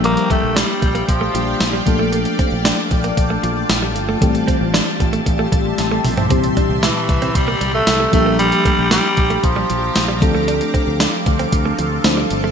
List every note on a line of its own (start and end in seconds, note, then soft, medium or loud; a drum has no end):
0.00 0.16 A#1 loud
0.00 1.31 F3 medium
0.00 1.31 G3 medium
0.00 0.11 G3 medium
0.00 1.32 A#3 medium
0.00 1.32 D4 medium
0.00 1.32 G4 medium
0.00 1.83 G4 medium
0.00 4.17 D5 medium
0.00 1.85 F5 medium
0.00 4.18 G5 medium
0.04 0.32 A#3 loud
0.04 closed hi-hat medium
0.17 muted clean electric guitar stroke soft
0.17 closed hi-hat medium
0.30 0.59 A3 loud
0.30 0.37 A#3 medium
0.30 kick medium
0.30 closed hi-hat medium
0.43 0.62 A#1 medium
0.56 1.08 G3 loud
0.56 0.63 D4 medium
0.56 snare loud
0.56 closed hi-hat medium
0.56 tambourine medium
0.82 1.01 A#1 loud
0.82 muted clean electric guitar stroke soft
0.82 kick loud
0.82 closed hi-hat medium
0.95 1.02 A#3 medium
0.95 closed hi-hat medium
1.08 1.27 A#1 loud
1.08 1.83 F3 medium
1.08 muted clean electric guitar stroke soft
1.08 kick medium
1.08 closed hi-hat loud
1.21 1.29 A3 medium
1.34 1.53 A#1 loud
1.34 1.84 F3 soft
1.34 1.42 F3 medium
1.34 1.87 G3 soft
1.34 1.85 A#3 medium
1.34 1.86 D4 soft
1.34 1.87 G4 medium
1.34 closed hi-hat medium
1.60 1.80 A#1 loud
1.60 snare loud
1.60 closed hi-hat loud
1.60 tambourine medium
1.73 1.81 G3 medium
1.85 2.24 A#1 loud
1.85 3.91 F3 medium
1.85 3.91 A3 medium
1.85 3.91 A#3 medium
1.85 3.92 D4 medium
1.85 4.19 F4 medium
1.85 3.92 A4 medium
1.85 4.20 A5 medium
1.85 muted clean electric guitar stroke soft
1.85 kick loud
1.85 closed hi-hat medium
1.99 2.07 A3 medium
2.12 2.20 A#3 medium
2.12 closed hi-hat loud
2.25 muted clean electric guitar stroke soft
2.25 closed hi-hat medium
2.39 2.46 C4 medium
2.39 kick medium
2.39 closed hi-hat medium
2.52 2.71 A#1 loud
2.65 2.72 D4 medium
2.65 snare loud
2.65 closed hi-hat medium
2.65 tambourine medium
2.91 3.10 A#1 loud
2.91 muted clean electric guitar stroke soft
2.91 kick loud
2.91 closed hi-hat medium
3.04 3.12 A#3 medium
3.04 closed hi-hat medium
3.17 3.36 A#1 medium
3.17 muted clean electric guitar stroke soft
3.17 kick loud
3.17 closed hi-hat medium
3.30 3.38 A3 medium
3.43 3.62 A#1 loud
3.43 3.51 F3 medium
3.43 closed hi-hat medium
3.69 3.96 A#1 loud
3.69 snare loud
3.69 closed hi-hat loud
3.69 tambourine medium
3.82 3.90 G3 medium
3.95 4.15 G1 medium
3.95 muted clean electric guitar stroke soft
3.95 closed hi-hat medium
4.09 4.16 A3 medium
4.21 4.41 A1 loud
4.21 6.26 E3 medium
4.21 6.26 G3 medium
4.21 4.29 A3 medium
4.21 6.27 A3 medium
4.21 6.27 C4 medium
4.21 6.28 G4 medium
4.21 6.27 G4 medium
4.21 8.09 E5 medium
4.21 6.28 A5 medium
4.21 8.09 C6 medium
4.21 kick loud
4.21 closed hi-hat medium
4.35 muted clean electric guitar stroke soft
4.35 closed hi-hat medium
4.48 4.55 C4 medium
4.48 kick medium
4.48 closed hi-hat medium
4.61 4.80 A1 medium
4.74 4.81 D4 medium
4.74 snare loud
4.74 closed hi-hat medium
4.74 tambourine medium
5.00 5.19 A1 loud
5.00 muted clean electric guitar stroke soft
5.00 kick loud
5.00 closed hi-hat medium
5.13 5.20 A3 medium
5.13 closed hi-hat medium
5.26 5.45 A1 loud
5.26 muted clean electric guitar stroke soft
5.26 kick medium
5.26 closed hi-hat medium
5.39 5.46 A3 medium
5.52 5.71 A1 loud
5.52 5.60 G3 medium
5.52 kick loud
5.52 closed hi-hat medium
5.78 5.97 A1 loud
5.78 snare medium
5.78 closed hi-hat loud
5.92 5.99 A3 medium
6.04 6.31 A#1 medium
6.04 muted clean electric guitar stroke soft
6.04 mid tom loud
6.04 open hi-hat medium
6.17 6.25 C4 medium
6.17 floor tom loud
6.29 6.49 C2 loud
6.29 8.09 A#2 medium
6.29 8.09 E3 medium
6.29 8.09 G3 medium
6.29 6.38 C4 medium
6.29 8.10 C4 medium
6.29 10.18 G4 medium
6.29 8.10 G4 medium
6.29 8.11 A#5 medium
6.29 kick loud
6.29 closed hi-hat medium
6.44 muted clean electric guitar stroke soft
6.44 closed hi-hat medium
6.57 6.64 D4 medium
6.57 kick medium
6.57 closed hi-hat medium
6.70 6.88 C2 medium
6.83 7.37 E3 medium
6.83 6.90 E4 medium
6.83 snare loud
6.83 closed hi-hat medium
6.83 tambourine medium
7.09 7.28 C2 medium
7.09 muted clean electric guitar stroke soft
7.09 kick loud
7.09 closed hi-hat medium
7.22 7.29 C4 medium
7.22 closed hi-hat medium
7.35 7.54 C2 loud
7.35 7.74 G3 loud
7.35 muted clean electric guitar stroke soft
7.35 kick loud
7.35 closed hi-hat medium
7.48 7.55 A#3 medium
7.61 7.80 C2 loud
7.61 7.68 G3 medium
7.61 closed hi-hat medium
7.74 8.11 A3 loud
7.87 8.06 C2 medium
7.87 snare loud
7.87 closed hi-hat loud
7.87 tambourine medium
8.00 8.07 A3 medium
8.12 8.51 A#1 loud
8.12 10.17 F3 medium
8.12 10.17 G3 medium
8.12 8.38 A3 loud
8.12 10.18 A#3 medium
8.12 10.18 D4 medium
8.12 10.18 G4 medium
8.12 12.51 F5 medium
8.12 10.19 A#5 medium
8.12 12.51 D6 medium
8.12 muted clean electric guitar stroke soft
8.12 kick loud
8.12 closed hi-hat medium
8.26 8.33 A#3 medium
8.39 8.46 G3 medium
8.39 8.88 G3 loud
8.39 closed hi-hat loud
8.52 muted clean electric guitar stroke soft
8.52 closed hi-hat medium
8.65 8.73 A3 medium
8.65 kick medium
8.65 closed hi-hat medium
8.79 8.97 A#1 medium
8.91 9.46 G3 loud
8.91 8.99 A#3 medium
8.91 snare loud
8.91 closed hi-hat medium
8.91 tambourine medium
9.17 9.36 A#1 medium
9.17 muted clean electric guitar stroke soft
9.17 kick loud
9.17 closed hi-hat medium
9.30 9.38 A3 medium
9.30 closed hi-hat medium
9.43 9.62 A#1 medium
9.43 10.22 F3 medium
9.43 muted clean electric guitar stroke soft
9.43 kick medium
9.43 closed hi-hat medium
9.56 9.64 G3 medium
9.70 9.89 A#1 loud
9.70 9.77 F3 medium
9.70 closed hi-hat medium
9.96 10.22 A#1 loud
9.96 snare loud
9.96 closed hi-hat loud
9.96 tambourine medium
10.08 10.16 G3 medium
10.20 10.60 D2 loud
10.20 12.00 F3 medium
10.20 12.00 A3 medium
10.20 12.01 C4 medium
10.20 12.01 D4 medium
10.20 12.51 A4 medium
10.20 12.01 A4 medium
10.20 12.51 C6 medium
10.20 muted clean electric guitar stroke soft
10.20 kick loud
10.20 closed hi-hat medium
10.35 10.42 A3 medium
10.48 10.55 D4 medium
10.48 closed hi-hat medium
10.61 muted clean electric guitar stroke soft
10.61 closed hi-hat medium
10.74 10.81 C4 medium
10.74 kick medium
10.74 closed hi-hat medium
10.87 11.06 D2 medium
11.00 11.07 D4 medium
11.00 snare loud
11.00 closed hi-hat medium
11.00 tambourine medium
11.26 11.45 D2 loud
11.26 muted clean electric guitar stroke soft
11.26 kick loud
11.26 closed hi-hat medium
11.39 11.47 C4 medium
11.39 closed hi-hat medium
11.52 11.71 D2 loud
11.52 muted clean electric guitar stroke soft
11.52 kick medium
11.52 closed hi-hat loud
11.66 11.73 A3 medium
11.79 11.97 D2 loud
11.79 11.86 F3 medium
11.79 closed hi-hat medium
12.04 12.23 D2 loud
12.04 12.51 F3 medium
12.04 12.51 A3 medium
12.04 12.51 C4 medium
12.04 12.51 D4 medium
12.04 12.51 C5 medium
12.04 snare loud
12.04 closed hi-hat loud
12.04 tambourine medium
12.17 12.25 G3 medium
12.30 12.50 G1 loud
12.30 muted clean electric guitar stroke soft
12.30 closed hi-hat medium
12.44 12.51 A3 medium